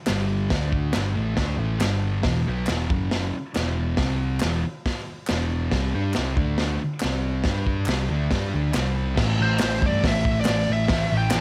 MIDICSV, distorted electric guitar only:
0, 0, Header, 1, 3, 480
1, 0, Start_track
1, 0, Tempo, 432277
1, 575, Time_signature, 4, 2, 24, 8
1, 12665, End_track
2, 0, Start_track
2, 0, Title_t, "Distorted electric guitar"
2, 0, Program_c, 0, 30
2, 70, Note_on_c, 0, 43, 89
2, 80, Note_on_c, 0, 50, 94
2, 80, Note_on_c, 0, 55, 101
2, 547, Note_off_c, 0, 50, 0
2, 556, Note_off_c, 0, 43, 0
2, 561, Note_off_c, 0, 55, 0
2, 561, Note_on_c, 0, 50, 97
2, 573, Note_on_c, 0, 57, 106
2, 575, Note_on_c, 0, 62, 106
2, 1031, Note_off_c, 0, 50, 0
2, 1032, Note_on_c, 0, 43, 91
2, 1045, Note_off_c, 0, 57, 0
2, 1045, Note_on_c, 0, 50, 104
2, 1049, Note_off_c, 0, 62, 0
2, 1049, Note_on_c, 0, 55, 102
2, 1267, Note_off_c, 0, 55, 0
2, 1268, Note_off_c, 0, 50, 0
2, 1272, Note_on_c, 0, 52, 99
2, 1273, Note_on_c, 0, 45, 96
2, 1278, Note_off_c, 0, 43, 0
2, 1283, Note_on_c, 0, 57, 105
2, 1493, Note_off_c, 0, 57, 0
2, 1494, Note_off_c, 0, 45, 0
2, 1498, Note_on_c, 0, 50, 94
2, 1502, Note_off_c, 0, 52, 0
2, 1506, Note_on_c, 0, 57, 95
2, 1518, Note_on_c, 0, 62, 106
2, 1745, Note_off_c, 0, 50, 0
2, 1750, Note_on_c, 0, 45, 91
2, 1756, Note_off_c, 0, 57, 0
2, 1762, Note_off_c, 0, 62, 0
2, 1765, Note_on_c, 0, 52, 86
2, 1772, Note_on_c, 0, 57, 88
2, 1988, Note_off_c, 0, 52, 0
2, 1991, Note_off_c, 0, 45, 0
2, 1992, Note_on_c, 0, 43, 90
2, 1993, Note_on_c, 0, 55, 106
2, 1995, Note_on_c, 0, 50, 94
2, 2009, Note_off_c, 0, 57, 0
2, 2469, Note_off_c, 0, 43, 0
2, 2472, Note_off_c, 0, 50, 0
2, 2474, Note_on_c, 0, 40, 82
2, 2476, Note_on_c, 0, 47, 100
2, 2480, Note_off_c, 0, 55, 0
2, 2493, Note_on_c, 0, 52, 95
2, 2720, Note_off_c, 0, 40, 0
2, 2722, Note_off_c, 0, 47, 0
2, 2730, Note_off_c, 0, 52, 0
2, 2740, Note_on_c, 0, 54, 87
2, 2741, Note_on_c, 0, 47, 84
2, 2757, Note_on_c, 0, 59, 90
2, 2974, Note_off_c, 0, 47, 0
2, 2974, Note_off_c, 0, 54, 0
2, 2983, Note_off_c, 0, 59, 0
2, 2988, Note_on_c, 0, 40, 89
2, 2995, Note_on_c, 0, 47, 99
2, 3011, Note_on_c, 0, 52, 102
2, 3218, Note_off_c, 0, 40, 0
2, 3222, Note_off_c, 0, 47, 0
2, 3230, Note_off_c, 0, 52, 0
2, 3236, Note_on_c, 0, 42, 79
2, 3242, Note_on_c, 0, 54, 93
2, 3244, Note_on_c, 0, 49, 86
2, 3693, Note_off_c, 0, 42, 0
2, 3706, Note_off_c, 0, 54, 0
2, 3707, Note_off_c, 0, 49, 0
2, 3931, Note_on_c, 0, 40, 89
2, 3939, Note_on_c, 0, 47, 93
2, 3940, Note_on_c, 0, 52, 104
2, 4411, Note_off_c, 0, 40, 0
2, 4415, Note_off_c, 0, 47, 0
2, 4415, Note_off_c, 0, 52, 0
2, 4421, Note_on_c, 0, 55, 89
2, 4424, Note_on_c, 0, 48, 96
2, 4436, Note_on_c, 0, 60, 105
2, 4896, Note_off_c, 0, 55, 0
2, 4897, Note_off_c, 0, 48, 0
2, 4904, Note_off_c, 0, 60, 0
2, 4913, Note_on_c, 0, 40, 83
2, 4915, Note_on_c, 0, 47, 92
2, 4923, Note_on_c, 0, 52, 107
2, 5142, Note_off_c, 0, 40, 0
2, 5143, Note_off_c, 0, 47, 0
2, 5147, Note_off_c, 0, 52, 0
2, 5888, Note_on_c, 0, 40, 85
2, 5896, Note_on_c, 0, 47, 101
2, 5902, Note_on_c, 0, 52, 108
2, 6348, Note_off_c, 0, 47, 0
2, 6350, Note_off_c, 0, 40, 0
2, 6352, Note_off_c, 0, 52, 0
2, 6353, Note_on_c, 0, 48, 102
2, 6357, Note_on_c, 0, 55, 96
2, 6361, Note_on_c, 0, 60, 112
2, 6582, Note_off_c, 0, 48, 0
2, 6584, Note_off_c, 0, 55, 0
2, 6586, Note_off_c, 0, 60, 0
2, 6598, Note_on_c, 0, 55, 80
2, 6605, Note_on_c, 0, 67, 94
2, 6611, Note_on_c, 0, 62, 98
2, 6825, Note_off_c, 0, 55, 0
2, 6828, Note_off_c, 0, 67, 0
2, 6831, Note_off_c, 0, 62, 0
2, 6842, Note_on_c, 0, 48, 90
2, 6851, Note_on_c, 0, 55, 106
2, 6864, Note_on_c, 0, 60, 99
2, 7057, Note_off_c, 0, 48, 0
2, 7062, Note_off_c, 0, 55, 0
2, 7062, Note_on_c, 0, 50, 97
2, 7067, Note_on_c, 0, 57, 98
2, 7071, Note_off_c, 0, 60, 0
2, 7075, Note_on_c, 0, 62, 98
2, 7537, Note_off_c, 0, 50, 0
2, 7539, Note_off_c, 0, 57, 0
2, 7543, Note_off_c, 0, 62, 0
2, 7786, Note_on_c, 0, 48, 87
2, 7792, Note_on_c, 0, 55, 99
2, 7794, Note_on_c, 0, 60, 102
2, 8259, Note_off_c, 0, 48, 0
2, 8259, Note_off_c, 0, 55, 0
2, 8263, Note_off_c, 0, 60, 0
2, 8273, Note_on_c, 0, 55, 91
2, 8274, Note_on_c, 0, 62, 109
2, 8283, Note_on_c, 0, 67, 106
2, 8742, Note_off_c, 0, 55, 0
2, 8742, Note_off_c, 0, 62, 0
2, 8747, Note_off_c, 0, 67, 0
2, 8748, Note_on_c, 0, 48, 96
2, 8766, Note_on_c, 0, 60, 93
2, 8770, Note_on_c, 0, 55, 101
2, 8974, Note_off_c, 0, 48, 0
2, 8978, Note_on_c, 0, 50, 94
2, 8984, Note_off_c, 0, 55, 0
2, 8987, Note_off_c, 0, 60, 0
2, 8988, Note_on_c, 0, 57, 102
2, 8991, Note_on_c, 0, 62, 104
2, 9214, Note_off_c, 0, 50, 0
2, 9219, Note_off_c, 0, 57, 0
2, 9221, Note_off_c, 0, 62, 0
2, 9243, Note_on_c, 0, 55, 89
2, 9250, Note_on_c, 0, 62, 96
2, 9263, Note_on_c, 0, 67, 110
2, 9466, Note_off_c, 0, 55, 0
2, 9470, Note_off_c, 0, 62, 0
2, 9476, Note_off_c, 0, 67, 0
2, 9481, Note_on_c, 0, 50, 89
2, 9494, Note_on_c, 0, 57, 85
2, 9504, Note_on_c, 0, 62, 98
2, 9690, Note_off_c, 0, 50, 0
2, 9694, Note_on_c, 0, 48, 95
2, 9702, Note_off_c, 0, 57, 0
2, 9706, Note_on_c, 0, 55, 93
2, 9716, Note_off_c, 0, 62, 0
2, 9721, Note_on_c, 0, 60, 100
2, 10168, Note_off_c, 0, 48, 0
2, 10173, Note_on_c, 0, 45, 94
2, 10176, Note_off_c, 0, 55, 0
2, 10184, Note_off_c, 0, 60, 0
2, 10199, Note_on_c, 0, 52, 102
2, 10213, Note_on_c, 0, 57, 105
2, 12069, Note_off_c, 0, 45, 0
2, 12079, Note_off_c, 0, 52, 0
2, 12083, Note_on_c, 0, 45, 97
2, 12084, Note_on_c, 0, 52, 97
2, 12094, Note_off_c, 0, 57, 0
2, 12106, Note_on_c, 0, 57, 105
2, 12665, Note_off_c, 0, 45, 0
2, 12665, Note_off_c, 0, 52, 0
2, 12665, Note_off_c, 0, 57, 0
2, 12665, End_track
3, 0, Start_track
3, 0, Title_t, "Muted distorted electric guitar strokes"
3, 3698, Note_on_c, 9, 29, 57
3, 3809, Note_off_c, 9, 29, 0
3, 7552, Note_on_c, 9, 29, 61
3, 7664, Note_off_c, 9, 29, 0
3, 12665, End_track
0, 0, End_of_file